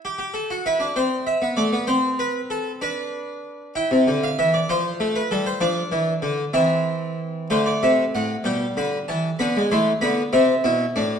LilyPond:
<<
  \new Staff \with { instrumentName = "Harpsichord" } { \time 6/8 \key c \major \tempo 4. = 64 << { r16 g'16 a'8 b'8 c''8 e''8 d''8 | c''8 b'8 a'8 b'4. | g''8. f''16 e''16 d''16 c''8. b'16 a'16 c''16 | d''4. e''4. |
c''16 d''16 e''8 fis''8 g''8 b''8 a''8 | b''8 c'''8 b''8 e''4. | } \\ { g'8. fis'16 e'16 d'16 c'8. b16 a16 b16 | c'4. d'4. | e'4. f'4. | d'4. c'4. |
a4. g4. | b16 gis16 a8 b8 c'8 e'8 d'8 | } >> }
  \new Staff \with { instrumentName = "Harpsichord" } { \clef bass \time 6/8 \key c \major r2. | r2. | r16 c16 d8 e8 f8 a8 g8 | f8 e8 d8 e4. |
d8 c8 a,8 b,8 d8 e8 | d8 e8 d8 c8 b,8 a,8 | }
>>